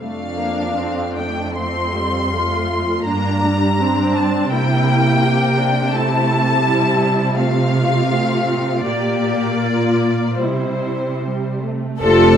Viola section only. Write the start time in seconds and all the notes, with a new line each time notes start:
0.00 A3 D4
0.39 A#3
0.77 C4
1.17 A3
1.58 A3 C4
1.96 G3
2.34 A3 F4
3.06 A#3 D4
3.43 G3
3.79 C4 D4
4.52 A#3 E4
5.23 G4
5.58 D4
5.94 A3 E4
6.65 G3 E4
7.36 A3 F4
8.10 A3
8.86 A#3 G4
9.61 F4
10.40 G3 E4
11.22 G3
11.62 A3
12.01 D4 F4